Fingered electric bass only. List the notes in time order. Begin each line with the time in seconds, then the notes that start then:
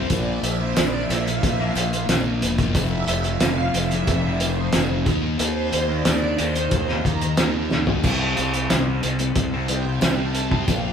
0.10 A#1
0.43 A#1
0.78 A#1
1.10 A#1
1.44 A#1
1.76 A#1
2.09 A#1
2.42 E1
2.76 F1
3.08 F1
3.41 F1
3.74 F1
4.08 F1
4.74 F1
5.07 D#2
5.40 D#2
5.74 D#2
6.06 D#2
6.40 D#2
6.72 D#2
7.05 D#2
7.39 D#2
7.72 D2
8.04 C2
8.38 C2
8.72 C2
9.04 C2
9.36 C2
10.02 C2
10.68 A#1